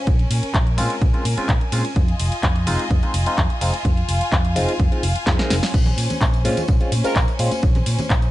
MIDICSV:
0, 0, Header, 1, 7, 480
1, 0, Start_track
1, 0, Key_signature, -5, "minor"
1, 0, Tempo, 472441
1, 71, Time_signature, 4, 2, 24, 8
1, 8442, End_track
2, 0, Start_track
2, 0, Title_t, "Violin section"
2, 0, Program_c, 0, 48
2, 0, Note_on_c, 0, 61, 80
2, 0, Note_on_c, 0, 80, 89
2, 73, Note_on_c, 0, 70, 74
2, 1953, Note_off_c, 0, 61, 0
2, 1973, Note_off_c, 0, 70, 0
2, 1991, Note_on_c, 0, 75, 72
2, 1992, Note_on_c, 0, 65, 80
2, 3892, Note_off_c, 0, 75, 0
2, 3917, Note_on_c, 0, 77, 73
2, 5793, Note_off_c, 0, 65, 0
2, 5815, Note_off_c, 0, 77, 0
2, 5828, Note_on_c, 0, 72, 73
2, 5829, Note_on_c, 0, 61, 80
2, 8442, Note_off_c, 0, 61, 0
2, 8442, Note_off_c, 0, 72, 0
2, 8442, Note_off_c, 0, 80, 0
2, 8442, End_track
3, 0, Start_track
3, 0, Title_t, "Analog polysynth"
3, 0, Program_c, 1, 90
3, 7155, Note_on_c, 1, 70, 94
3, 7349, Note_off_c, 1, 70, 0
3, 8442, End_track
4, 0, Start_track
4, 0, Title_t, "Tine electric piano"
4, 0, Program_c, 2, 4
4, 786, Note_on_c, 2, 56, 92
4, 790, Note_on_c, 2, 60, 84
4, 792, Note_on_c, 2, 61, 86
4, 794, Note_on_c, 2, 65, 103
4, 958, Note_off_c, 2, 56, 0
4, 960, Note_off_c, 2, 60, 0
4, 961, Note_off_c, 2, 61, 0
4, 962, Note_off_c, 2, 65, 0
4, 1152, Note_on_c, 2, 56, 87
4, 1155, Note_on_c, 2, 60, 80
4, 1158, Note_on_c, 2, 61, 80
4, 1161, Note_on_c, 2, 65, 96
4, 1253, Note_off_c, 2, 56, 0
4, 1255, Note_off_c, 2, 60, 0
4, 1257, Note_off_c, 2, 61, 0
4, 1258, Note_off_c, 2, 65, 0
4, 1394, Note_on_c, 2, 56, 88
4, 1397, Note_on_c, 2, 60, 80
4, 1400, Note_on_c, 2, 61, 82
4, 1402, Note_on_c, 2, 65, 99
4, 1494, Note_off_c, 2, 56, 0
4, 1496, Note_off_c, 2, 60, 0
4, 1497, Note_off_c, 2, 61, 0
4, 1498, Note_off_c, 2, 65, 0
4, 1750, Note_on_c, 2, 56, 85
4, 1752, Note_on_c, 2, 60, 77
4, 1755, Note_on_c, 2, 61, 79
4, 1758, Note_on_c, 2, 65, 91
4, 1859, Note_off_c, 2, 56, 0
4, 1860, Note_off_c, 2, 60, 0
4, 1862, Note_off_c, 2, 61, 0
4, 1863, Note_off_c, 2, 65, 0
4, 2708, Note_on_c, 2, 56, 94
4, 2711, Note_on_c, 2, 60, 83
4, 2713, Note_on_c, 2, 63, 85
4, 2717, Note_on_c, 2, 65, 102
4, 2879, Note_off_c, 2, 56, 0
4, 2881, Note_off_c, 2, 60, 0
4, 2882, Note_off_c, 2, 63, 0
4, 2883, Note_off_c, 2, 65, 0
4, 3075, Note_on_c, 2, 56, 87
4, 3078, Note_on_c, 2, 60, 81
4, 3080, Note_on_c, 2, 63, 78
4, 3082, Note_on_c, 2, 65, 99
4, 3175, Note_off_c, 2, 56, 0
4, 3176, Note_off_c, 2, 60, 0
4, 3177, Note_off_c, 2, 63, 0
4, 3178, Note_off_c, 2, 65, 0
4, 3315, Note_on_c, 2, 56, 91
4, 3319, Note_on_c, 2, 60, 84
4, 3321, Note_on_c, 2, 63, 84
4, 3322, Note_on_c, 2, 65, 100
4, 3415, Note_off_c, 2, 56, 0
4, 3417, Note_off_c, 2, 60, 0
4, 3418, Note_off_c, 2, 63, 0
4, 3419, Note_off_c, 2, 65, 0
4, 3669, Note_on_c, 2, 56, 82
4, 3671, Note_on_c, 2, 60, 77
4, 3674, Note_on_c, 2, 63, 76
4, 3676, Note_on_c, 2, 65, 93
4, 3779, Note_off_c, 2, 56, 0
4, 3780, Note_off_c, 2, 60, 0
4, 3781, Note_off_c, 2, 63, 0
4, 3782, Note_off_c, 2, 65, 0
4, 4627, Note_on_c, 2, 56, 93
4, 4630, Note_on_c, 2, 60, 88
4, 4631, Note_on_c, 2, 63, 85
4, 4634, Note_on_c, 2, 65, 105
4, 4798, Note_off_c, 2, 56, 0
4, 4800, Note_off_c, 2, 60, 0
4, 4801, Note_off_c, 2, 63, 0
4, 4802, Note_off_c, 2, 65, 0
4, 4994, Note_on_c, 2, 56, 88
4, 4997, Note_on_c, 2, 60, 78
4, 5001, Note_on_c, 2, 63, 79
4, 5003, Note_on_c, 2, 65, 96
4, 5095, Note_off_c, 2, 56, 0
4, 5096, Note_off_c, 2, 60, 0
4, 5098, Note_off_c, 2, 63, 0
4, 5099, Note_off_c, 2, 65, 0
4, 5346, Note_on_c, 2, 56, 86
4, 5349, Note_on_c, 2, 60, 79
4, 5352, Note_on_c, 2, 63, 77
4, 5354, Note_on_c, 2, 65, 93
4, 5455, Note_off_c, 2, 56, 0
4, 5457, Note_off_c, 2, 60, 0
4, 5459, Note_off_c, 2, 63, 0
4, 5459, Note_off_c, 2, 65, 0
4, 5473, Note_on_c, 2, 56, 81
4, 5476, Note_on_c, 2, 60, 73
4, 5479, Note_on_c, 2, 63, 74
4, 5480, Note_on_c, 2, 70, 90
4, 5637, Note_off_c, 2, 56, 0
4, 5639, Note_off_c, 2, 60, 0
4, 5640, Note_off_c, 2, 63, 0
4, 5641, Note_off_c, 2, 70, 0
4, 6547, Note_on_c, 2, 56, 93
4, 6550, Note_on_c, 2, 60, 86
4, 6552, Note_on_c, 2, 61, 85
4, 6555, Note_on_c, 2, 65, 104
4, 6719, Note_off_c, 2, 56, 0
4, 6720, Note_off_c, 2, 60, 0
4, 6721, Note_off_c, 2, 61, 0
4, 6723, Note_off_c, 2, 65, 0
4, 6912, Note_on_c, 2, 56, 85
4, 6915, Note_on_c, 2, 60, 80
4, 6918, Note_on_c, 2, 61, 78
4, 6921, Note_on_c, 2, 65, 94
4, 7013, Note_off_c, 2, 56, 0
4, 7015, Note_off_c, 2, 60, 0
4, 7016, Note_off_c, 2, 61, 0
4, 7018, Note_off_c, 2, 65, 0
4, 7154, Note_on_c, 2, 56, 90
4, 7156, Note_on_c, 2, 60, 82
4, 7159, Note_on_c, 2, 61, 82
4, 7161, Note_on_c, 2, 65, 98
4, 7254, Note_off_c, 2, 56, 0
4, 7255, Note_off_c, 2, 60, 0
4, 7257, Note_off_c, 2, 61, 0
4, 7258, Note_off_c, 2, 65, 0
4, 7508, Note_on_c, 2, 56, 82
4, 7510, Note_on_c, 2, 60, 77
4, 7512, Note_on_c, 2, 61, 75
4, 7515, Note_on_c, 2, 65, 95
4, 7618, Note_off_c, 2, 56, 0
4, 7619, Note_off_c, 2, 60, 0
4, 7620, Note_off_c, 2, 61, 0
4, 7622, Note_off_c, 2, 65, 0
4, 8442, End_track
5, 0, Start_track
5, 0, Title_t, "Fingered electric bass"
5, 0, Program_c, 3, 33
5, 72, Note_on_c, 3, 34, 105
5, 240, Note_off_c, 3, 34, 0
5, 310, Note_on_c, 3, 46, 94
5, 397, Note_off_c, 3, 46, 0
5, 552, Note_on_c, 3, 34, 96
5, 789, Note_on_c, 3, 46, 82
5, 805, Note_off_c, 3, 34, 0
5, 877, Note_off_c, 3, 46, 0
5, 1031, Note_on_c, 3, 34, 91
5, 1117, Note_off_c, 3, 34, 0
5, 1271, Note_on_c, 3, 46, 96
5, 1357, Note_off_c, 3, 46, 0
5, 1510, Note_on_c, 3, 34, 86
5, 1597, Note_off_c, 3, 34, 0
5, 1751, Note_on_c, 3, 46, 81
5, 1837, Note_off_c, 3, 46, 0
5, 1992, Note_on_c, 3, 41, 102
5, 2160, Note_off_c, 3, 41, 0
5, 2232, Note_on_c, 3, 29, 96
5, 2318, Note_off_c, 3, 29, 0
5, 2471, Note_on_c, 3, 41, 97
5, 2710, Note_on_c, 3, 29, 82
5, 2726, Note_off_c, 3, 41, 0
5, 2797, Note_off_c, 3, 29, 0
5, 2951, Note_on_c, 3, 41, 92
5, 3037, Note_off_c, 3, 41, 0
5, 3189, Note_on_c, 3, 29, 94
5, 3276, Note_off_c, 3, 29, 0
5, 3432, Note_on_c, 3, 41, 84
5, 3518, Note_off_c, 3, 41, 0
5, 3671, Note_on_c, 3, 29, 79
5, 3757, Note_off_c, 3, 29, 0
5, 3910, Note_on_c, 3, 41, 102
5, 4079, Note_off_c, 3, 41, 0
5, 4149, Note_on_c, 3, 29, 94
5, 4236, Note_off_c, 3, 29, 0
5, 4392, Note_on_c, 3, 41, 95
5, 4630, Note_on_c, 3, 29, 83
5, 4645, Note_off_c, 3, 41, 0
5, 4717, Note_off_c, 3, 29, 0
5, 4872, Note_on_c, 3, 41, 91
5, 4958, Note_off_c, 3, 41, 0
5, 5109, Note_on_c, 3, 29, 94
5, 5197, Note_off_c, 3, 29, 0
5, 5351, Note_on_c, 3, 41, 82
5, 5437, Note_off_c, 3, 41, 0
5, 5592, Note_on_c, 3, 29, 79
5, 5678, Note_off_c, 3, 29, 0
5, 5831, Note_on_c, 3, 34, 103
5, 6000, Note_off_c, 3, 34, 0
5, 6070, Note_on_c, 3, 46, 94
5, 6157, Note_off_c, 3, 46, 0
5, 6311, Note_on_c, 3, 34, 98
5, 6552, Note_on_c, 3, 46, 80
5, 6567, Note_off_c, 3, 34, 0
5, 6638, Note_off_c, 3, 46, 0
5, 6791, Note_on_c, 3, 34, 88
5, 6878, Note_off_c, 3, 34, 0
5, 7029, Note_on_c, 3, 46, 94
5, 7117, Note_off_c, 3, 46, 0
5, 7271, Note_on_c, 3, 34, 85
5, 7358, Note_off_c, 3, 34, 0
5, 7511, Note_on_c, 3, 46, 80
5, 7597, Note_off_c, 3, 46, 0
5, 7752, Note_on_c, 3, 34, 103
5, 7920, Note_off_c, 3, 34, 0
5, 7991, Note_on_c, 3, 46, 93
5, 8078, Note_off_c, 3, 46, 0
5, 8230, Note_on_c, 3, 34, 95
5, 8442, Note_off_c, 3, 34, 0
5, 8442, End_track
6, 0, Start_track
6, 0, Title_t, "Muted fingered electric bass strokes"
6, 436, Note_on_c, 9, 29, 46
6, 538, Note_off_c, 9, 29, 0
6, 1397, Note_on_c, 9, 29, 45
6, 1498, Note_off_c, 9, 29, 0
6, 2358, Note_on_c, 9, 29, 45
6, 2459, Note_off_c, 9, 29, 0
6, 3316, Note_on_c, 9, 29, 44
6, 3418, Note_off_c, 9, 29, 0
6, 4276, Note_on_c, 9, 29, 45
6, 4378, Note_off_c, 9, 29, 0
6, 5238, Note_on_c, 9, 29, 44
6, 5339, Note_off_c, 9, 29, 0
6, 6197, Note_on_c, 9, 29, 46
6, 6299, Note_off_c, 9, 29, 0
6, 7156, Note_on_c, 9, 29, 44
6, 7258, Note_off_c, 9, 29, 0
6, 8116, Note_on_c, 9, 29, 46
6, 8218, Note_off_c, 9, 29, 0
6, 8442, End_track
7, 0, Start_track
7, 0, Title_t, "Drums"
7, 70, Note_on_c, 9, 42, 52
7, 72, Note_on_c, 9, 36, 120
7, 172, Note_off_c, 9, 42, 0
7, 173, Note_off_c, 9, 36, 0
7, 196, Note_on_c, 9, 42, 26
7, 298, Note_off_c, 9, 42, 0
7, 311, Note_on_c, 9, 46, 104
7, 311, Note_on_c, 9, 51, 84
7, 413, Note_off_c, 9, 46, 0
7, 413, Note_off_c, 9, 51, 0
7, 436, Note_on_c, 9, 42, 52
7, 538, Note_off_c, 9, 42, 0
7, 551, Note_on_c, 9, 36, 106
7, 552, Note_on_c, 9, 42, 53
7, 554, Note_on_c, 9, 39, 115
7, 653, Note_off_c, 9, 36, 0
7, 654, Note_off_c, 9, 42, 0
7, 656, Note_off_c, 9, 39, 0
7, 677, Note_on_c, 9, 42, 26
7, 779, Note_off_c, 9, 42, 0
7, 791, Note_on_c, 9, 46, 101
7, 791, Note_on_c, 9, 51, 80
7, 893, Note_off_c, 9, 46, 0
7, 893, Note_off_c, 9, 51, 0
7, 916, Note_on_c, 9, 42, 52
7, 1017, Note_off_c, 9, 42, 0
7, 1031, Note_on_c, 9, 42, 52
7, 1032, Note_on_c, 9, 36, 118
7, 1133, Note_off_c, 9, 36, 0
7, 1133, Note_off_c, 9, 42, 0
7, 1157, Note_on_c, 9, 42, 26
7, 1259, Note_off_c, 9, 42, 0
7, 1272, Note_on_c, 9, 46, 103
7, 1272, Note_on_c, 9, 51, 84
7, 1374, Note_off_c, 9, 46, 0
7, 1374, Note_off_c, 9, 51, 0
7, 1397, Note_on_c, 9, 42, 52
7, 1499, Note_off_c, 9, 42, 0
7, 1511, Note_on_c, 9, 42, 53
7, 1512, Note_on_c, 9, 36, 105
7, 1513, Note_on_c, 9, 39, 111
7, 1612, Note_off_c, 9, 42, 0
7, 1613, Note_off_c, 9, 36, 0
7, 1614, Note_off_c, 9, 39, 0
7, 1638, Note_on_c, 9, 42, 26
7, 1739, Note_off_c, 9, 42, 0
7, 1750, Note_on_c, 9, 46, 106
7, 1750, Note_on_c, 9, 51, 84
7, 1852, Note_off_c, 9, 46, 0
7, 1852, Note_off_c, 9, 51, 0
7, 1876, Note_on_c, 9, 42, 54
7, 1978, Note_off_c, 9, 42, 0
7, 1991, Note_on_c, 9, 42, 56
7, 1992, Note_on_c, 9, 36, 118
7, 2092, Note_off_c, 9, 42, 0
7, 2093, Note_off_c, 9, 36, 0
7, 2118, Note_on_c, 9, 42, 28
7, 2219, Note_off_c, 9, 42, 0
7, 2230, Note_on_c, 9, 46, 102
7, 2230, Note_on_c, 9, 51, 85
7, 2332, Note_off_c, 9, 46, 0
7, 2332, Note_off_c, 9, 51, 0
7, 2356, Note_on_c, 9, 42, 56
7, 2458, Note_off_c, 9, 42, 0
7, 2469, Note_on_c, 9, 42, 54
7, 2471, Note_on_c, 9, 36, 103
7, 2472, Note_on_c, 9, 39, 118
7, 2571, Note_off_c, 9, 42, 0
7, 2573, Note_off_c, 9, 36, 0
7, 2573, Note_off_c, 9, 39, 0
7, 2597, Note_on_c, 9, 42, 27
7, 2699, Note_off_c, 9, 42, 0
7, 2712, Note_on_c, 9, 46, 100
7, 2712, Note_on_c, 9, 51, 84
7, 2813, Note_off_c, 9, 46, 0
7, 2813, Note_off_c, 9, 51, 0
7, 2838, Note_on_c, 9, 42, 56
7, 2939, Note_off_c, 9, 42, 0
7, 2952, Note_on_c, 9, 36, 114
7, 2953, Note_on_c, 9, 42, 52
7, 3053, Note_off_c, 9, 36, 0
7, 3055, Note_off_c, 9, 42, 0
7, 3077, Note_on_c, 9, 42, 27
7, 3179, Note_off_c, 9, 42, 0
7, 3190, Note_on_c, 9, 46, 104
7, 3190, Note_on_c, 9, 51, 85
7, 3292, Note_off_c, 9, 46, 0
7, 3292, Note_off_c, 9, 51, 0
7, 3315, Note_on_c, 9, 42, 56
7, 3417, Note_off_c, 9, 42, 0
7, 3431, Note_on_c, 9, 36, 103
7, 3431, Note_on_c, 9, 42, 55
7, 3434, Note_on_c, 9, 39, 115
7, 3533, Note_off_c, 9, 36, 0
7, 3533, Note_off_c, 9, 42, 0
7, 3535, Note_off_c, 9, 39, 0
7, 3557, Note_on_c, 9, 42, 27
7, 3659, Note_off_c, 9, 42, 0
7, 3671, Note_on_c, 9, 46, 104
7, 3671, Note_on_c, 9, 51, 88
7, 3773, Note_off_c, 9, 46, 0
7, 3773, Note_off_c, 9, 51, 0
7, 3797, Note_on_c, 9, 42, 54
7, 3898, Note_off_c, 9, 42, 0
7, 3911, Note_on_c, 9, 36, 117
7, 3912, Note_on_c, 9, 42, 56
7, 4013, Note_off_c, 9, 36, 0
7, 4013, Note_off_c, 9, 42, 0
7, 4037, Note_on_c, 9, 42, 27
7, 4139, Note_off_c, 9, 42, 0
7, 4152, Note_on_c, 9, 46, 103
7, 4152, Note_on_c, 9, 51, 81
7, 4253, Note_off_c, 9, 46, 0
7, 4253, Note_off_c, 9, 51, 0
7, 4277, Note_on_c, 9, 42, 58
7, 4379, Note_off_c, 9, 42, 0
7, 4391, Note_on_c, 9, 36, 104
7, 4391, Note_on_c, 9, 42, 57
7, 4394, Note_on_c, 9, 39, 123
7, 4493, Note_off_c, 9, 36, 0
7, 4493, Note_off_c, 9, 42, 0
7, 4495, Note_off_c, 9, 39, 0
7, 4519, Note_on_c, 9, 42, 28
7, 4620, Note_off_c, 9, 42, 0
7, 4633, Note_on_c, 9, 46, 99
7, 4633, Note_on_c, 9, 51, 80
7, 4735, Note_off_c, 9, 46, 0
7, 4735, Note_off_c, 9, 51, 0
7, 4760, Note_on_c, 9, 42, 56
7, 4862, Note_off_c, 9, 42, 0
7, 4872, Note_on_c, 9, 36, 119
7, 4872, Note_on_c, 9, 42, 55
7, 4974, Note_off_c, 9, 36, 0
7, 4974, Note_off_c, 9, 42, 0
7, 4999, Note_on_c, 9, 42, 27
7, 5101, Note_off_c, 9, 42, 0
7, 5113, Note_on_c, 9, 46, 104
7, 5113, Note_on_c, 9, 51, 83
7, 5214, Note_off_c, 9, 46, 0
7, 5214, Note_off_c, 9, 51, 0
7, 5238, Note_on_c, 9, 42, 55
7, 5339, Note_off_c, 9, 42, 0
7, 5351, Note_on_c, 9, 36, 106
7, 5351, Note_on_c, 9, 38, 62
7, 5351, Note_on_c, 9, 42, 57
7, 5354, Note_on_c, 9, 39, 123
7, 5453, Note_off_c, 9, 36, 0
7, 5453, Note_off_c, 9, 38, 0
7, 5453, Note_off_c, 9, 42, 0
7, 5455, Note_off_c, 9, 39, 0
7, 5478, Note_on_c, 9, 38, 62
7, 5478, Note_on_c, 9, 42, 28
7, 5580, Note_off_c, 9, 38, 0
7, 5580, Note_off_c, 9, 42, 0
7, 5592, Note_on_c, 9, 38, 90
7, 5592, Note_on_c, 9, 46, 104
7, 5592, Note_on_c, 9, 51, 83
7, 5694, Note_off_c, 9, 38, 0
7, 5694, Note_off_c, 9, 46, 0
7, 5694, Note_off_c, 9, 51, 0
7, 5719, Note_on_c, 9, 38, 84
7, 5719, Note_on_c, 9, 46, 59
7, 5820, Note_off_c, 9, 38, 0
7, 5820, Note_off_c, 9, 46, 0
7, 5831, Note_on_c, 9, 36, 123
7, 5834, Note_on_c, 9, 42, 55
7, 5834, Note_on_c, 9, 49, 78
7, 5841, Note_on_c, 9, 54, 70
7, 5933, Note_off_c, 9, 36, 0
7, 5935, Note_off_c, 9, 42, 0
7, 5935, Note_off_c, 9, 49, 0
7, 5943, Note_off_c, 9, 54, 0
7, 5952, Note_on_c, 9, 54, 43
7, 5953, Note_on_c, 9, 64, 104
7, 5961, Note_on_c, 9, 42, 28
7, 6054, Note_off_c, 9, 54, 0
7, 6055, Note_off_c, 9, 64, 0
7, 6062, Note_off_c, 9, 42, 0
7, 6074, Note_on_c, 9, 46, 110
7, 6074, Note_on_c, 9, 51, 81
7, 6175, Note_off_c, 9, 46, 0
7, 6175, Note_off_c, 9, 51, 0
7, 6199, Note_on_c, 9, 42, 55
7, 6200, Note_on_c, 9, 54, 90
7, 6200, Note_on_c, 9, 63, 74
7, 6203, Note_on_c, 9, 64, 83
7, 6301, Note_off_c, 9, 42, 0
7, 6302, Note_off_c, 9, 54, 0
7, 6302, Note_off_c, 9, 63, 0
7, 6304, Note_off_c, 9, 64, 0
7, 6309, Note_on_c, 9, 54, 70
7, 6312, Note_on_c, 9, 36, 109
7, 6313, Note_on_c, 9, 42, 55
7, 6315, Note_on_c, 9, 39, 127
7, 6411, Note_off_c, 9, 54, 0
7, 6413, Note_off_c, 9, 36, 0
7, 6414, Note_off_c, 9, 42, 0
7, 6416, Note_off_c, 9, 39, 0
7, 6435, Note_on_c, 9, 54, 45
7, 6438, Note_on_c, 9, 42, 28
7, 6537, Note_off_c, 9, 54, 0
7, 6539, Note_off_c, 9, 42, 0
7, 6553, Note_on_c, 9, 46, 102
7, 6553, Note_on_c, 9, 51, 77
7, 6553, Note_on_c, 9, 63, 95
7, 6654, Note_off_c, 9, 63, 0
7, 6655, Note_off_c, 9, 46, 0
7, 6655, Note_off_c, 9, 51, 0
7, 6677, Note_on_c, 9, 42, 56
7, 6678, Note_on_c, 9, 54, 79
7, 6680, Note_on_c, 9, 64, 88
7, 6779, Note_off_c, 9, 42, 0
7, 6779, Note_off_c, 9, 54, 0
7, 6782, Note_off_c, 9, 64, 0
7, 6784, Note_on_c, 9, 54, 67
7, 6791, Note_on_c, 9, 36, 126
7, 6791, Note_on_c, 9, 42, 55
7, 6886, Note_off_c, 9, 54, 0
7, 6893, Note_off_c, 9, 36, 0
7, 6893, Note_off_c, 9, 42, 0
7, 6907, Note_on_c, 9, 54, 38
7, 6916, Note_on_c, 9, 42, 28
7, 7009, Note_off_c, 9, 54, 0
7, 7018, Note_off_c, 9, 42, 0
7, 7031, Note_on_c, 9, 46, 110
7, 7031, Note_on_c, 9, 51, 81
7, 7031, Note_on_c, 9, 63, 88
7, 7133, Note_off_c, 9, 46, 0
7, 7133, Note_off_c, 9, 51, 0
7, 7133, Note_off_c, 9, 63, 0
7, 7156, Note_on_c, 9, 42, 55
7, 7158, Note_on_c, 9, 54, 82
7, 7258, Note_off_c, 9, 42, 0
7, 7259, Note_off_c, 9, 54, 0
7, 7270, Note_on_c, 9, 42, 55
7, 7270, Note_on_c, 9, 54, 73
7, 7271, Note_on_c, 9, 36, 107
7, 7272, Note_on_c, 9, 39, 125
7, 7372, Note_off_c, 9, 42, 0
7, 7372, Note_off_c, 9, 54, 0
7, 7373, Note_off_c, 9, 36, 0
7, 7374, Note_off_c, 9, 39, 0
7, 7394, Note_on_c, 9, 54, 44
7, 7397, Note_on_c, 9, 42, 28
7, 7495, Note_off_c, 9, 54, 0
7, 7498, Note_off_c, 9, 42, 0
7, 7510, Note_on_c, 9, 46, 109
7, 7510, Note_on_c, 9, 51, 82
7, 7611, Note_off_c, 9, 46, 0
7, 7611, Note_off_c, 9, 51, 0
7, 7635, Note_on_c, 9, 42, 55
7, 7640, Note_on_c, 9, 63, 86
7, 7643, Note_on_c, 9, 54, 81
7, 7736, Note_off_c, 9, 42, 0
7, 7741, Note_off_c, 9, 63, 0
7, 7744, Note_off_c, 9, 54, 0
7, 7749, Note_on_c, 9, 54, 63
7, 7750, Note_on_c, 9, 42, 53
7, 7752, Note_on_c, 9, 36, 127
7, 7851, Note_off_c, 9, 42, 0
7, 7851, Note_off_c, 9, 54, 0
7, 7853, Note_off_c, 9, 36, 0
7, 7873, Note_on_c, 9, 54, 38
7, 7875, Note_on_c, 9, 42, 27
7, 7881, Note_on_c, 9, 64, 102
7, 7974, Note_off_c, 9, 54, 0
7, 7976, Note_off_c, 9, 42, 0
7, 7983, Note_off_c, 9, 64, 0
7, 7988, Note_on_c, 9, 46, 110
7, 7988, Note_on_c, 9, 51, 75
7, 8090, Note_off_c, 9, 46, 0
7, 8090, Note_off_c, 9, 51, 0
7, 8114, Note_on_c, 9, 42, 56
7, 8118, Note_on_c, 9, 64, 95
7, 8122, Note_on_c, 9, 54, 78
7, 8126, Note_on_c, 9, 63, 74
7, 8215, Note_off_c, 9, 42, 0
7, 8220, Note_off_c, 9, 64, 0
7, 8223, Note_off_c, 9, 54, 0
7, 8228, Note_off_c, 9, 63, 0
7, 8228, Note_on_c, 9, 54, 64
7, 8230, Note_on_c, 9, 42, 54
7, 8231, Note_on_c, 9, 36, 113
7, 8233, Note_on_c, 9, 39, 127
7, 8330, Note_off_c, 9, 54, 0
7, 8332, Note_off_c, 9, 42, 0
7, 8333, Note_off_c, 9, 36, 0
7, 8334, Note_off_c, 9, 39, 0
7, 8354, Note_on_c, 9, 54, 40
7, 8355, Note_on_c, 9, 42, 27
7, 8442, Note_off_c, 9, 42, 0
7, 8442, Note_off_c, 9, 54, 0
7, 8442, End_track
0, 0, End_of_file